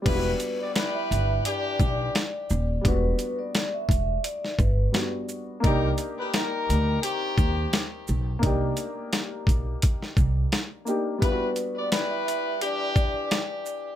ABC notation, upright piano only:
X:1
M:4/4
L:1/8
Q:"Swing 16ths" 1/4=86
K:Em
V:1 name="Upright piano"
[G,B,D=F^F]8 | [G,B,DF]6 [G,B,DF]2 | [_B,D_EG]8 | [_B,D_EG]6- [B,DEG] [B,DEG] |
[G,B,D=F^F]8 |]